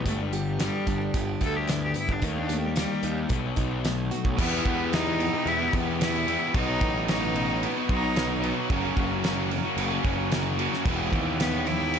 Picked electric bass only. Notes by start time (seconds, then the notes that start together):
0.06 G1
0.87 G1
1.14 G1
1.41 D2
2.09 G1
2.22 D#2
3.03 D#2
3.30 B1
3.57 B1
4.25 B1
4.38 E2
4.65 E2
5.46 E2
5.73 E2
6.55 B1
6.82 A1
7.89 B1
8.70 F#1
8.97 F#1
9.77 F#1
10.04 F#1
10.85 E1
11.12 D#2